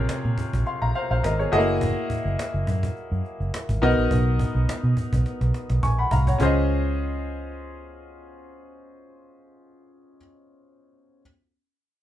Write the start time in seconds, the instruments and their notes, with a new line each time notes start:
Already playing: grand piano C3 F4 G#4 A#4 C#5
0.09 muted fingered electric bass stroke, cajon slap
0.24 fingered electric bass A#2, cajon slap
0.38 cajon bass
0.53 fingered electric bass A#1, cajon bass, cajon slap
0.66 grand piano F5 C6, cajon slap
0.82 fingered electric bass A#1, grand piano F5 A#5, cajon slap
0.94 grand piano C5 F5, cajon slap
1.11 fingered electric bass A#1, grand piano C5 F5, cajon slap
1.24 fingered electric bass G#1, grand piano A#4 D#5, cajon slap
1.39 grand piano G#4 C#5, cajon slap
1.52 fingered electric bass F#1, grand piano A3 E4 F#4 G#4 D#5
1.58 grand piano A#3
1.68 cajon slap
1.81 cajon bass
1.97 cajon slap
2.10 cajon bass
2.25 fingered electric bass F#1, cajon slap
2.39 cajon slap
2.54 fingered electric bass F#1, cajon slap
2.67 fingered electric bass F#2, cajon bass
2.83 cajon bass, cajon slap
2.96 cajon slap
3.12 fingered electric bass F#2, cajon slap
3.25 cajon slap
3.40 fingered electric bass F#1, cajon slap
3.54 cajon slap
3.69 fingered electric bass G#1, cajon bass, cajon slap
3.82 fingered electric bass B1, grand piano B3 D#4 F#4 A#4 D#5
3.98 fingered electric bass A#1, cajon slap
4.11 fingered electric bass B1, cajon bass
4.39 cajon bass
4.55 fingered electric bass B1, cajon slap
4.69 cajon slap
4.83 fingered electric bass B2, cajon slap
4.97 cajon bass
5.13 fingered electric bass B1, cajon bass, cajon slap
5.25 cajon slap
5.41 fingered electric bass B1, cajon slap
5.54 cajon slap
5.70 fingered electric bass B1, cajon slap
5.83 fingered electric bass A#1, grand piano G#5 C#6, cajon bass, cajon slap
5.99 grand piano F#5 B5
6.11 fingered electric bass C2, grand piano F5 A#5, cajon bass
6.27 grand piano C#5 F#5, cajon bass
6.38 fingered electric bass C#2, grand piano C#4 F4 G#4 C5, cajon bass, cajon slap
6.43 grand piano D#5